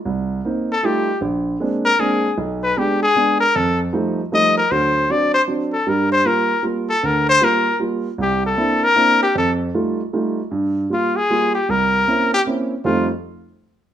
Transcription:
X:1
M:3/4
L:1/8
Q:"Swing" 1/4=155
K:Fmix
V:1 name="Trumpet"
z3 A G2 | z3 B _A2 | z =B G ^G2 _B | A z3 e B |
c2 d c z A | B c B2 z A | B c B2 z2 | G A2 B2 G |
A z4 z | z2 F _A2 G | B3 G z2 | F z4 z |]
V:2 name="Grand piano"
C,,2 [B,CE] z [G,A,EF] z | B,,,2 [_A,B,CD] z [A,B,CD] z | =B,,,2 [^G,=B,D] z [G,B,D] z | F,,2 [F,G,A,E] z [F,G,A,E] z |
[D,,^F,]2 [F,CD] z [F,CD] z | [G,,G,]2 [G,B,F] z [G,B,F] z | D,,2 [G,B,F] z [G,B,F] z | C,,2 [B,CD=E] z [B,CDE] z |
F,,2 [G,A,EF] z [G,A,EF] z | G,,2 [G,B,F] z [G,B,F] z | C,,2 [B,C_D=E] z [B,CDE] z | [F,,F,G,A,E] z4 z |]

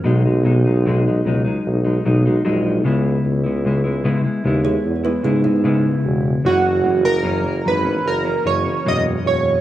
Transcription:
X:1
M:4/4
L:1/16
Q:1/4=75
K:B
V:1 name="Synth keys"
z16 | z16 | F3 A3 B2 A2 c2 d2 c2 |]
V:2 name="Kalimba"
z16 | z6 z [Gc]2 [EB] [CG] [B,E]4- [B,E] | z16 |]
V:3 name="Clean electric guitar" clef=bass
[B,,F,G,D] [F,G,D] [B,,F,G,D] [F,G,D] [B,,F,G,D] [F,G,D] [B,,F,G,D] [F,G,D]2 [F,G,D] [B,,F,G,D] [F,G,D] [F,G,D]2 [C,G,B,E]2- | [C,G,B,E] [G,B,E] [C,G,B,E] [G,B,E] [C,G,B,E] [G,B,E] [C,G,B,E] [G,B,E]2 [G,B,E] [C,G,B,E] [G,B,E] [C,G,B,E]4 | [F,,E,A,C]2 [F,,E,A,C] [E,A,C] [F,,E,A,C] [E,A,C] [F,,E,A,C] [E,A,C]2 [E,A,C] [F,,E,A,C] [E,A,C] [F,,E,A,C]4 |]
V:4 name="Tuba" clef=bass
B,,,6 C,,2 B,,,2 B,,,2 A,,,2 C,,2 | C,,4 z2 D,,2 E,,2 G,,4 E,,,2 | F,,,6 G,,,2 F,,,2 F,,,2 E,,,2 E,,,2 |]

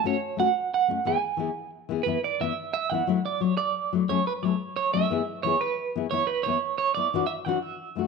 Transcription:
X:1
M:12/8
L:1/8
Q:3/8=119
K:Emix
V:1 name="Clean electric guitar"
c2 f2 f2 g4 z2 | B d e2 e f2 d c d2 z | c B c2 c e3 c B2 z | c B c2 c d2 e f e2 z |]
V:2 name="Nylon-string guitar"
[A,CF] z [A,CF] z2 [A,C] [E,B,EG] z [E,B,EG] z2 [E,B,EG] | [E,B,E] z [E,B,E] z2 [E,B,E] [F,A,E] z F, z2 [F,A,E] | [F,A,CA] z [F,A,CA] z2 [F,A,CA] [E,B,EG] z [E,B,EG] z2 [E,B,EG] | [E,B,E] z [E,B,E] z2 [B,E] [E,DF] z [E,DF] z2 [E,A,DF] |]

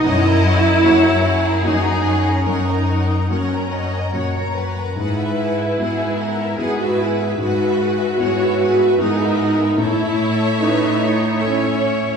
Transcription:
X:1
M:3/4
L:1/16
Q:1/4=75
K:F#mix
V:1 name="Violin section"
[cf] [Aa] [cf] [Aa] [cf] [Aa] [cf] [Aa] [cf] [Aa] [cf] [Aa] | [cf] [Aa] [cf] [Aa] [cf] [Aa] [cf] [Aa] [cf] [Aa] [cf] [Aa] | [Gf] [Be] [Gf] [Be] [Gf] [Be] [Gf] [Be] [Gf] [Be] [Gf] [Be] | [Gf] [Be] [Gf] [Be] [Gf] [Be] [Gf] [Be] [Gf] [Be] [Gf] [Be] |
[ce]8 [ce]4 |]
V:2 name="Violin section"
d4 c2 G6 | A4 A2 d2 c2 B2 | B4 G2 A2 B4 | B4 c2 B2 A4 |
=A2 A2 B2 c6 |]
V:3 name="Viola section"
E8 D3 C | D4 C6 z2 | E8 G F E G | F8 D4 |
E4 D4 C4 |]
V:4 name="Grand piano"
F,,4 [A,CF]4 [A,CF]4 | F,,4 [A,CF]4 [A,,CF]4 | G,,4 [B,EF]4 [B,EF]4 | G,,4 [B,EF]4 [B,EF]4 |
=A,,4 [CE=A]4 [CEA]4 |]
V:5 name="Cello section" clef=bass
F,,4 F,,4 F,,4 | F,,4 F,,4 F,,4 | G,,4 G,,4 G,,4 | G,,4 G,,4 G,,4 |
=A,,12 |]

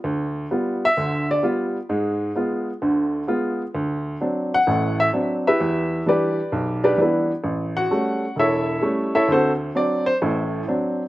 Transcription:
X:1
M:4/4
L:1/8
Q:"Swing" 1/4=130
K:Dmix
V:1 name="Upright piano"
z3 e2 d z2 | z8 | z3 f2 e z [EGBe]- | [EGBe]2 [GBd]3 [DGBd] [B,EGB] z |
z [Ff]3 [EA^ce]3 [EAce] | [CFAc] z d c z4 |]
V:2 name="Upright piano" clef=bass
D,,2 [G,B,=F] z [D,,D,]2 [G,B,F] z | [^G,,^G,]2 [G,B,^E] z [D,,D,]2 [G,B,E] z | D,,2 [F,CD] z [A,,,A,,]2 [F,CD] z | E,,2 [E,G,D] z B,,,2 [E,G,D] z |
A,,,2 [G,A,^C] z E,,,2 [G,A,C] z | D,,2 [F,CD] z [A,,,A,,]2 [F,CD] z |]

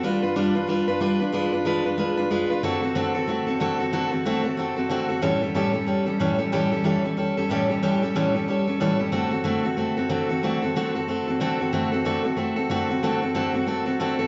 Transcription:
X:1
M:4/4
L:1/8
Q:"Swing" 1/4=185
K:Dmix
V:1 name="Steel-string acoustic guitar"
[G,D=FB] [DFB] [G,DFB] [DFB] [G,DFB] [DFB] [G,DFB] [DFB] | [^G,D^EB] [DEB] [G,DEB] [DEB] [G,DEB] [DEB] [G,DEB] [DEB] | [D,A,CFA] [CFA] [D,A,CFA] [CFA] [A,CFA] [CFA] [D,A,CFA] [CFA] | [D,A,CFA] [CFA] [D,A,CFA] [CFA] [A,CFA] [CFA] [D,A,CFA] [CFA] |
[A,,E,G,^CGA] [G,CGA] [A,,E,G,CGA] [G,CGA] [G,CGA] [G,CGA] [A,,E,G,CGA] [G,CGA] | [A,,E,G,^CGA] [G,CGA] [A,,E,G,CGA] [G,CGA] [G,CGA] [G,CGA] [A,,E,G,CGA] [G,CGA] | [A,,E,G,^CGA] [G,CGA] [A,,E,G,CGA] [G,CGA] [G,CGA] [G,CGA] [A,,E,G,CGA] [G,CGA] | [D,A,CFA] [CFA] [D,A,CFA] [CFA] [A,CFA] [CFA] [D,A,CFA] [CFA] |
[D,A,CFA] [CFA] [D,A,CFA] [CFA] [A,CFA] [CFA] [D,A,CFA] [CFA] | [D,A,CFA] [CFA] [D,A,CFA] [CFA] [A,CFA] [CFA] [D,A,CFA] [CFA] | [D,A,CFA] [CFA] [D,A,CFA] [CFA] [A,CFA] [CFA] [D,A,CFA] [CFA] |]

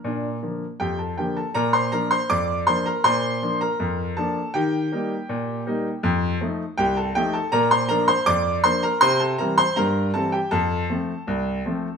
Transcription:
X:1
M:2/4
L:1/16
Q:1/4=80
K:Bb
V:1 name="Grand piano"
[Bb]4 [Gg] [Aa] [Gg] [Aa] | [Bb] [cc'] [Bb] [cc'] [dd']2 [cc'] [Bb] | [cc']3 [Bb]3 [Aa]2 | [Gg]8- |
[Gg]2 z2 [Gg] [Aa] [Gg] [Aa] | [Bb] [cc'] [Bb] [cc'] [dd']2 [cc'] [Bb] | [cc'] [Aa] [Bb] [cc'] [Bb]2 [Aa] [Gg] | [Aa]8 |]
V:2 name="Grand piano" clef=bass
[B,,D]2 [D,F,B,]2 F,,2 [D,F,B,]2 | B,,2 [F,B,D]2 F,,2 [F,B,D]2 | B,,2 [F,B,D]2 F,,2 [F,B,D]2 | E,2 [G,B,E]2 B,,2 [G,B,E]2 |
F,,2 [F,A,E]2 C,,2 [F,A,E]2 | B,,2 [F,B,D]2 F,,2 [F,B,D]2 | C,2 [=E,G,C]2 G,,2 [E,G,C]2 | F,,2 [F,A,C]2 C,,2 [F,A,C]2 |]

